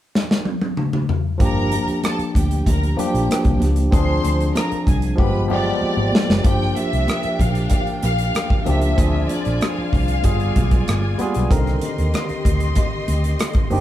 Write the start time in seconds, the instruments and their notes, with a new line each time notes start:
0.15 snare
0.31 snare
0.45 high tom
0.61 high tom
0.77 mid tom
0.93 mid tom
1.09 floor tom
1.38 fingered electric bass G1, tine electric piano F3 A#3 D4 G4, string section A#4 A#5, kick, closed hi-hat, muted conga
1.72 closed hi-hat, muted conga
1.87 muted fingered electric bass stroke, closed hi-hat
2.04 string section A4 A5, cross-stick, closed hi-hat, high conga
2.19 muted fingered electric bass stroke, closed hi-hat
2.35 fingered electric bass D2, string section G4 G5, kick, closed hi-hat
2.51 closed hi-hat
2.66 fingered electric bass D2, string section A#4 A#5, kick, closed hi-hat, muted conga
2.83 closed hi-hat
2.97 tine electric piano F3 A#3 D4 G4, string section G4 G5, closed hi-hat, muted conga, low conga
3.14 fingered electric bass A#1, closed hi-hat
3.30 cross-stick, closed hi-hat, high conga
3.45 fingered electric bass C2, kick, closed hi-hat, high conga
3.60 fingered electric bass C#2, cross-stick, closed hi-hat, high conga
3.76 closed hi-hat
3.91 fingered electric bass D2, tine electric piano E3 C4 D4 G#4, string section C5 C6, kick, closed hi-hat, muted conga
3.97 tine electric piano F3
4.24 fingered electric bass D2, closed hi-hat, muted conga
4.40 closed hi-hat
4.55 string section A#4 A#5, cross-stick, closed hi-hat, high conga
4.72 muted fingered electric bass stroke, closed hi-hat
4.87 fingered electric bass C2, string section G#4 G#5, kick, closed hi-hat
5.02 closed hi-hat
5.16 fingered electric bass G1, tine electric piano F3 G#3 B3 G4, kick, muted conga
5.20 string section B4 B5
5.48 tine electric piano F3 G#3 B3 G4, string section G4 G5, muted conga, low conga
5.53 violin section D5
5.81 muted fingered electric bass stroke, high conga
5.97 fingered electric bass G#1, high conga
6.12 snare, high conga
6.29 fingered electric bass F#1, snare
6.43 fingered electric bass G1, tine electric piano F3 A#3 D4 G4, string section D4 A#4 G5, violin section G5, kick, closed hi-hat, muted conga
6.62 cross-stick
6.76 violin section E5, closed hi-hat, muted conga
6.93 fingered electric bass C2, closed hi-hat
7.08 cross-stick, closed hi-hat, high conga
7.23 muted fingered electric bass stroke, closed hi-hat
7.39 fingered electric bass A#1, violin section F5, kick, closed hi-hat
7.55 closed hi-hat
7.70 violin section F5, kick, closed hi-hat
7.87 closed hi-hat
8.03 fingered electric bass A#1, violin section F5, closed hi-hat, muted conga
8.19 closed hi-hat
8.35 cross-stick, closed hi-hat, high conga
8.50 kick
8.66 fingered electric bass C#2, tine electric piano F3 A#3 D4 G4, violin section E5, closed hi-hat, high conga
8.82 closed hi-hat
8.97 fingered electric bass D2, tine electric piano F3 C4 D4 G#4, string section F4 D5 G#5, kick, closed hi-hat, muted conga
9.29 violin section D5, closed hi-hat, muted conga
9.45 fingered electric bass A#1, closed hi-hat
9.61 violin section F5, cross-stick, closed hi-hat, high conga
9.78 muted fingered electric bass stroke
9.93 fingered electric bass C2, kick, open hi-hat
10.08 closed hi-hat
10.22 fingered electric bass G1, tine electric piano G3 B3 F4 G#4, string section F4 D5 G#5, kick, closed hi-hat
10.40 closed hi-hat
10.56 fingered electric bass B1, kick, closed hi-hat, muted conga, low conga
10.71 kick, closed hi-hat
10.88 fingered electric bass G1, cross-stick, closed hi-hat, high conga
11.18 tine electric piano G3 B3 F4 G#4, closed hi-hat, high conga
11.34 fingered electric bass B1, closed hi-hat
11.49 fingered electric bass C2, tine electric piano D3 D#3 C4 A#4, string section G4 D#5 C6, kick, closed hi-hat, muted conga
11.67 cross-stick, closed hi-hat
11.81 closed hi-hat, muted conga
11.98 fingered electric bass D#2, closed hi-hat
12.14 cross-stick, closed hi-hat, high conga
12.29 muted fingered electric bass stroke, closed hi-hat
12.45 fingered electric bass D2, kick, closed hi-hat
12.60 closed hi-hat
12.75 kick, closed hi-hat, muted conga
13.08 fingered electric bass D2, closed hi-hat, muted conga
13.24 closed hi-hat
13.39 cross-stick, closed hi-hat, high conga
13.53 kick, closed hi-hat
13.70 fingered electric bass F#1, tine electric piano D#3 C4 D4 G4, open hi-hat, high conga